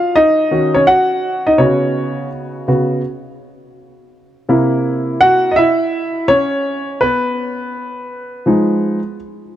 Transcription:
0, 0, Header, 1, 2, 480
1, 0, Start_track
1, 0, Tempo, 722892
1, 1059, Time_signature, 4, 2, 24, 8
1, 6349, End_track
2, 0, Start_track
2, 0, Title_t, "Grand piano"
2, 0, Program_c, 0, 0
2, 0, Note_on_c, 0, 51, 57
2, 0, Note_on_c, 0, 65, 67
2, 0, Note_on_c, 0, 66, 59
2, 0, Note_on_c, 0, 77, 89
2, 91, Note_off_c, 0, 65, 0
2, 103, Note_on_c, 0, 75, 97
2, 108, Note_off_c, 0, 77, 0
2, 111, Note_on_c, 0, 63, 74
2, 329, Note_off_c, 0, 51, 0
2, 334, Note_off_c, 0, 66, 0
2, 339, Note_on_c, 0, 51, 47
2, 341, Note_on_c, 0, 61, 45
2, 344, Note_on_c, 0, 66, 54
2, 473, Note_off_c, 0, 63, 0
2, 494, Note_off_c, 0, 61, 0
2, 494, Note_on_c, 0, 73, 88
2, 504, Note_on_c, 0, 61, 64
2, 507, Note_off_c, 0, 75, 0
2, 555, Note_off_c, 0, 51, 0
2, 558, Note_off_c, 0, 66, 0
2, 578, Note_on_c, 0, 78, 101
2, 579, Note_off_c, 0, 61, 0
2, 582, Note_off_c, 0, 73, 0
2, 586, Note_on_c, 0, 66, 76
2, 951, Note_off_c, 0, 66, 0
2, 973, Note_on_c, 0, 75, 79
2, 980, Note_on_c, 0, 63, 58
2, 985, Note_off_c, 0, 78, 0
2, 1051, Note_on_c, 0, 49, 50
2, 1051, Note_on_c, 0, 73, 83
2, 1056, Note_on_c, 0, 59, 51
2, 1057, Note_off_c, 0, 63, 0
2, 1060, Note_on_c, 0, 61, 63
2, 1060, Note_on_c, 0, 66, 60
2, 1062, Note_off_c, 0, 75, 0
2, 1508, Note_off_c, 0, 73, 0
2, 1513, Note_off_c, 0, 61, 0
2, 1769, Note_off_c, 0, 49, 0
2, 1769, Note_off_c, 0, 59, 0
2, 1772, Note_off_c, 0, 66, 0
2, 1779, Note_on_c, 0, 49, 50
2, 1779, Note_on_c, 0, 59, 45
2, 1782, Note_on_c, 0, 66, 53
2, 1995, Note_off_c, 0, 49, 0
2, 1995, Note_off_c, 0, 59, 0
2, 1997, Note_off_c, 0, 66, 0
2, 2979, Note_on_c, 0, 48, 51
2, 2981, Note_on_c, 0, 58, 54
2, 2985, Note_on_c, 0, 64, 60
2, 3457, Note_on_c, 0, 78, 110
2, 3470, Note_on_c, 0, 66, 80
2, 3658, Note_off_c, 0, 66, 0
2, 3661, Note_on_c, 0, 75, 77
2, 3671, Note_off_c, 0, 78, 0
2, 3673, Note_off_c, 0, 48, 0
2, 3674, Note_off_c, 0, 58, 0
2, 3676, Note_off_c, 0, 64, 0
2, 3693, Note_on_c, 0, 76, 99
2, 3697, Note_off_c, 0, 75, 0
2, 3707, Note_on_c, 0, 64, 84
2, 4157, Note_off_c, 0, 64, 0
2, 4171, Note_on_c, 0, 73, 108
2, 4184, Note_on_c, 0, 61, 72
2, 4191, Note_off_c, 0, 76, 0
2, 4635, Note_off_c, 0, 61, 0
2, 4653, Note_on_c, 0, 71, 96
2, 4667, Note_on_c, 0, 59, 63
2, 4670, Note_off_c, 0, 73, 0
2, 5616, Note_on_c, 0, 53, 54
2, 5622, Note_on_c, 0, 56, 49
2, 5626, Note_on_c, 0, 63, 60
2, 5963, Note_off_c, 0, 53, 0
2, 5966, Note_off_c, 0, 56, 0
2, 5968, Note_off_c, 0, 63, 0
2, 6069, Note_off_c, 0, 71, 0
2, 6077, Note_off_c, 0, 59, 0
2, 6349, End_track
0, 0, End_of_file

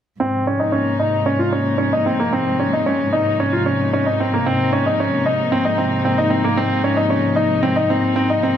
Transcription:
0, 0, Header, 1, 4, 480
1, 0, Start_track
1, 0, Tempo, 530973
1, 188, Time_signature, 4, 2, 24, 8
1, 7748, End_track
2, 0, Start_track
2, 0, Title_t, "Grand piano"
2, 0, Program_c, 0, 0
2, 181, Note_on_c, 0, 60, 76
2, 390, Note_off_c, 0, 60, 0
2, 427, Note_on_c, 0, 61, 62
2, 530, Note_off_c, 0, 61, 0
2, 538, Note_on_c, 0, 63, 56
2, 645, Note_off_c, 0, 63, 0
2, 652, Note_on_c, 0, 61, 60
2, 865, Note_off_c, 0, 61, 0
2, 899, Note_on_c, 0, 63, 59
2, 1109, Note_off_c, 0, 63, 0
2, 1139, Note_on_c, 0, 61, 70
2, 1246, Note_off_c, 0, 61, 0
2, 1257, Note_on_c, 0, 65, 55
2, 1365, Note_off_c, 0, 65, 0
2, 1379, Note_on_c, 0, 61, 60
2, 1589, Note_off_c, 0, 61, 0
2, 1609, Note_on_c, 0, 61, 63
2, 1720, Note_off_c, 0, 61, 0
2, 1742, Note_on_c, 0, 63, 60
2, 1848, Note_off_c, 0, 63, 0
2, 1863, Note_on_c, 0, 60, 62
2, 1968, Note_off_c, 0, 60, 0
2, 1985, Note_on_c, 0, 58, 58
2, 2089, Note_off_c, 0, 58, 0
2, 2104, Note_on_c, 0, 60, 75
2, 2311, Note_off_c, 0, 60, 0
2, 2347, Note_on_c, 0, 61, 61
2, 2450, Note_off_c, 0, 61, 0
2, 2469, Note_on_c, 0, 63, 55
2, 2572, Note_off_c, 0, 63, 0
2, 2588, Note_on_c, 0, 61, 61
2, 2794, Note_off_c, 0, 61, 0
2, 2826, Note_on_c, 0, 63, 61
2, 3033, Note_off_c, 0, 63, 0
2, 3072, Note_on_c, 0, 61, 68
2, 3173, Note_off_c, 0, 61, 0
2, 3189, Note_on_c, 0, 65, 57
2, 3291, Note_off_c, 0, 65, 0
2, 3309, Note_on_c, 0, 61, 60
2, 3514, Note_off_c, 0, 61, 0
2, 3556, Note_on_c, 0, 61, 66
2, 3656, Note_off_c, 0, 61, 0
2, 3673, Note_on_c, 0, 63, 61
2, 3774, Note_off_c, 0, 63, 0
2, 3800, Note_on_c, 0, 60, 62
2, 3897, Note_off_c, 0, 60, 0
2, 3921, Note_on_c, 0, 58, 56
2, 4018, Note_off_c, 0, 58, 0
2, 4036, Note_on_c, 0, 60, 77
2, 4238, Note_off_c, 0, 60, 0
2, 4273, Note_on_c, 0, 61, 65
2, 4374, Note_off_c, 0, 61, 0
2, 4397, Note_on_c, 0, 63, 61
2, 4496, Note_off_c, 0, 63, 0
2, 4521, Note_on_c, 0, 61, 60
2, 4721, Note_off_c, 0, 61, 0
2, 4753, Note_on_c, 0, 63, 66
2, 4957, Note_off_c, 0, 63, 0
2, 4990, Note_on_c, 0, 60, 74
2, 5092, Note_off_c, 0, 60, 0
2, 5107, Note_on_c, 0, 63, 62
2, 5210, Note_off_c, 0, 63, 0
2, 5225, Note_on_c, 0, 60, 59
2, 5433, Note_off_c, 0, 60, 0
2, 5467, Note_on_c, 0, 60, 64
2, 5571, Note_off_c, 0, 60, 0
2, 5587, Note_on_c, 0, 63, 65
2, 5690, Note_off_c, 0, 63, 0
2, 5698, Note_on_c, 0, 60, 61
2, 5805, Note_off_c, 0, 60, 0
2, 5825, Note_on_c, 0, 58, 60
2, 5929, Note_off_c, 0, 58, 0
2, 5942, Note_on_c, 0, 60, 75
2, 6151, Note_off_c, 0, 60, 0
2, 6184, Note_on_c, 0, 61, 64
2, 6288, Note_off_c, 0, 61, 0
2, 6299, Note_on_c, 0, 63, 54
2, 6405, Note_off_c, 0, 63, 0
2, 6418, Note_on_c, 0, 61, 57
2, 6628, Note_off_c, 0, 61, 0
2, 6653, Note_on_c, 0, 63, 63
2, 6865, Note_off_c, 0, 63, 0
2, 6896, Note_on_c, 0, 60, 70
2, 7004, Note_off_c, 0, 60, 0
2, 7016, Note_on_c, 0, 63, 63
2, 7124, Note_off_c, 0, 63, 0
2, 7143, Note_on_c, 0, 60, 64
2, 7351, Note_off_c, 0, 60, 0
2, 7375, Note_on_c, 0, 60, 66
2, 7484, Note_off_c, 0, 60, 0
2, 7502, Note_on_c, 0, 63, 59
2, 7608, Note_off_c, 0, 63, 0
2, 7623, Note_on_c, 0, 60, 64
2, 7728, Note_off_c, 0, 60, 0
2, 7748, End_track
3, 0, Start_track
3, 0, Title_t, "String section"
3, 0, Program_c, 1, 48
3, 175, Note_on_c, 1, 48, 61
3, 255, Note_on_c, 1, 53, 57
3, 579, Note_on_c, 1, 58, 67
3, 584, Note_on_c, 1, 63, 59
3, 7748, Note_off_c, 1, 48, 0
3, 7748, Note_off_c, 1, 53, 0
3, 7748, Note_off_c, 1, 58, 0
3, 7748, Note_off_c, 1, 63, 0
3, 7748, End_track
4, 0, Start_track
4, 0, Title_t, "Cello section"
4, 0, Program_c, 2, 48
4, 186, Note_on_c, 2, 44, 66
4, 4003, Note_off_c, 2, 44, 0
4, 4026, Note_on_c, 2, 44, 69
4, 7748, Note_off_c, 2, 44, 0
4, 7748, End_track
0, 0, End_of_file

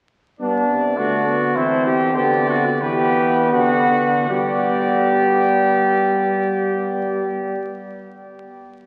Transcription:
0, 0, Header, 1, 5, 480
1, 0, Start_track
1, 0, Key_signature, 1, "major"
1, 0, Tempo, 585938
1, 328, Time_signature, 3, 2, 24, 8
1, 1774, Tempo, 652174
1, 2254, Tempo, 708383
1, 2734, Tempo, 773196
1, 3214, Tempo, 804290
1, 5938, End_track
2, 0, Start_track
2, 0, Title_t, "Trumpet"
2, 0, Program_c, 0, 56
2, 325, Note_on_c, 0, 74, 67
2, 1277, Note_on_c, 0, 72, 72
2, 1289, Note_off_c, 0, 74, 0
2, 1768, Note_off_c, 0, 72, 0
2, 1773, Note_on_c, 0, 74, 73
2, 2252, Note_on_c, 0, 71, 73
2, 2263, Note_off_c, 0, 74, 0
2, 2733, Note_off_c, 0, 71, 0
2, 2737, Note_on_c, 0, 78, 72
2, 3206, Note_off_c, 0, 78, 0
2, 3211, Note_on_c, 0, 74, 65
2, 5249, Note_off_c, 0, 74, 0
2, 5938, End_track
3, 0, Start_track
3, 0, Title_t, "Flugelhorn"
3, 0, Program_c, 1, 56
3, 330, Note_on_c, 1, 62, 59
3, 795, Note_on_c, 1, 66, 63
3, 807, Note_off_c, 1, 62, 0
3, 1275, Note_on_c, 1, 64, 60
3, 1287, Note_off_c, 1, 66, 0
3, 1514, Note_off_c, 1, 64, 0
3, 1519, Note_on_c, 1, 67, 67
3, 1768, Note_off_c, 1, 67, 0
3, 1773, Note_on_c, 1, 67, 63
3, 2004, Note_off_c, 1, 67, 0
3, 2008, Note_on_c, 1, 66, 60
3, 2118, Note_off_c, 1, 66, 0
3, 2257, Note_on_c, 1, 67, 77
3, 2725, Note_off_c, 1, 67, 0
3, 2732, Note_on_c, 1, 66, 69
3, 3203, Note_off_c, 1, 66, 0
3, 3215, Note_on_c, 1, 67, 65
3, 5253, Note_off_c, 1, 67, 0
3, 5938, End_track
4, 0, Start_track
4, 0, Title_t, "Trombone"
4, 0, Program_c, 2, 57
4, 333, Note_on_c, 2, 59, 68
4, 768, Note_off_c, 2, 59, 0
4, 800, Note_on_c, 2, 57, 61
4, 1030, Note_off_c, 2, 57, 0
4, 1037, Note_on_c, 2, 59, 61
4, 1281, Note_on_c, 2, 60, 70
4, 1293, Note_off_c, 2, 59, 0
4, 1779, Note_on_c, 2, 59, 72
4, 1790, Note_off_c, 2, 60, 0
4, 2252, Note_off_c, 2, 59, 0
4, 2256, Note_on_c, 2, 59, 83
4, 3196, Note_off_c, 2, 59, 0
4, 3214, Note_on_c, 2, 59, 70
4, 5252, Note_off_c, 2, 59, 0
4, 5938, End_track
5, 0, Start_track
5, 0, Title_t, "Bass trombone"
5, 0, Program_c, 3, 57
5, 327, Note_on_c, 3, 43, 56
5, 546, Note_off_c, 3, 43, 0
5, 562, Note_on_c, 3, 48, 58
5, 797, Note_on_c, 3, 50, 62
5, 810, Note_off_c, 3, 48, 0
5, 1274, Note_off_c, 3, 50, 0
5, 1277, Note_on_c, 3, 52, 67
5, 1772, Note_on_c, 3, 50, 70
5, 1784, Note_off_c, 3, 52, 0
5, 2250, Note_off_c, 3, 50, 0
5, 2254, Note_on_c, 3, 52, 72
5, 2730, Note_on_c, 3, 50, 70
5, 2740, Note_off_c, 3, 52, 0
5, 2963, Note_off_c, 3, 50, 0
5, 2966, Note_on_c, 3, 50, 63
5, 3208, Note_off_c, 3, 50, 0
5, 3211, Note_on_c, 3, 55, 63
5, 5248, Note_off_c, 3, 55, 0
5, 5938, End_track
0, 0, End_of_file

